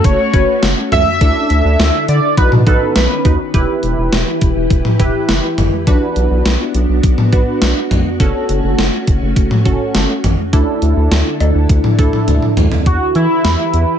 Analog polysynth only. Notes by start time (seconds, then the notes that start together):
0.34 C#4 F#4 B4
0.92 C#4 F#4 A4
1.21 D4 E4 A4
2.38 D#4 F#4 B4
2.67 D#4 F#4 A4
3.25 D#4 F#4 B4
3.54 E4 G4 B4
4.99 E4 G4 B4
5.87 D4 F#4 B4
7.33 D4 F#4 B4
8.20 C#4 F#4 A4
9.66 C#4 F#4 A4
10.53 D4 E4 A4
11.99 D4 E4 A4